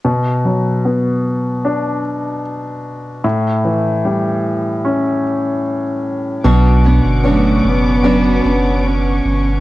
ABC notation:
X:1
M:4/4
L:1/16
Q:1/4=75
K:Bm
V:1 name="String section"
z16 | z16 | [Bfc'd']16 |]
V:2 name="Steel-string acoustic guitar"
z16 | z16 | [B,,F,CDF]2 [CDF]2 [F,CDF]4 [B,,F,CDF]2 [CF]6 |]
V:3 name="Cello"
z16 | z16 | z2 B,2 A,2 B,6 C4 |]
V:4 name="Grand piano"
B,,2 F,2 B,4 D8 | A,,2 E,2 G,4 C8 | B,,4 [B,CD]4 [B,CD]4 z4 |]
V:5 name="Sub bass" clef=bass
z16 | z16 | B,,,3 G,,,3 F,,,4 F,,,4 G,,,2 |]